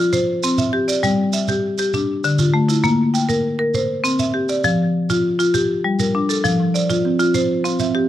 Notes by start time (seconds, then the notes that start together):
Already playing: F4
0.13 C5, shekere
0.43 C4, shekere
0.58 E5, shekere
0.73 G4
0.88 D5, shekere
1.03 G3, shekere
1.33 E5, shekere
1.48 G4, shekere
1.78 G4, shekere
1.93 D4, shekere
2.24 D3, shekere
2.39 F4, shekere
2.54 A3
2.68 E4, shekere
2.84 A#3, shekere
3.14 G5, shekere
3.29 A#4, shekere
3.59 A#4
3.74 C5, shekere
4.04 C4, shekere
4.19 E5, shekere
4.34 G4
4.49 D5, shekere
4.64 F3, shekere
5.10 F4, shekere
5.39 F4, shekere
5.54 G4, shekere
5.84 G3
5.99 A#4, shekere
6.15 D4
6.29 A4, shekere
6.44 F3, shekere
6.60 F3
6.74 C5 D5, shekere
6.90 F4, shekere
7.05 C4
7.19 F4, shekere
7.34 F4 C5, shekere
7.64 C4 F5, shekere
7.79 C4 E5, shekere
7.95 G4